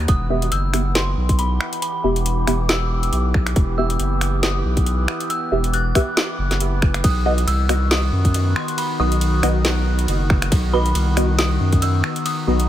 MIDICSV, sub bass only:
0, 0, Header, 1, 2, 480
1, 0, Start_track
1, 0, Key_signature, 1, "minor"
1, 0, Tempo, 434783
1, 92, Time_signature, 4, 2, 24, 8
1, 14008, End_track
2, 0, Start_track
2, 0, Title_t, "Sub bass"
2, 0, Program_c, 0, 38
2, 93, Note_on_c, 0, 28, 95
2, 555, Note_off_c, 0, 28, 0
2, 573, Note_on_c, 0, 30, 96
2, 1275, Note_off_c, 0, 30, 0
2, 1293, Note_on_c, 0, 35, 95
2, 1755, Note_off_c, 0, 35, 0
2, 2252, Note_on_c, 0, 28, 99
2, 2715, Note_off_c, 0, 28, 0
2, 2732, Note_on_c, 0, 28, 95
2, 3435, Note_off_c, 0, 28, 0
2, 3453, Note_on_c, 0, 35, 97
2, 3915, Note_off_c, 0, 35, 0
2, 3932, Note_on_c, 0, 28, 98
2, 4395, Note_off_c, 0, 28, 0
2, 4412, Note_on_c, 0, 30, 98
2, 5115, Note_off_c, 0, 30, 0
2, 5132, Note_on_c, 0, 35, 97
2, 5595, Note_off_c, 0, 35, 0
2, 6093, Note_on_c, 0, 28, 99
2, 6555, Note_off_c, 0, 28, 0
2, 7052, Note_on_c, 0, 30, 96
2, 7755, Note_off_c, 0, 30, 0
2, 7773, Note_on_c, 0, 35, 101
2, 8235, Note_off_c, 0, 35, 0
2, 8251, Note_on_c, 0, 36, 97
2, 8954, Note_off_c, 0, 36, 0
2, 8971, Note_on_c, 0, 42, 97
2, 9434, Note_off_c, 0, 42, 0
2, 9931, Note_on_c, 0, 35, 95
2, 10395, Note_off_c, 0, 35, 0
2, 10410, Note_on_c, 0, 35, 97
2, 11114, Note_off_c, 0, 35, 0
2, 11131, Note_on_c, 0, 30, 100
2, 11594, Note_off_c, 0, 30, 0
2, 11612, Note_on_c, 0, 35, 99
2, 12075, Note_off_c, 0, 35, 0
2, 12091, Note_on_c, 0, 36, 99
2, 12794, Note_off_c, 0, 36, 0
2, 12811, Note_on_c, 0, 42, 98
2, 13275, Note_off_c, 0, 42, 0
2, 13771, Note_on_c, 0, 35, 96
2, 14008, Note_off_c, 0, 35, 0
2, 14008, End_track
0, 0, End_of_file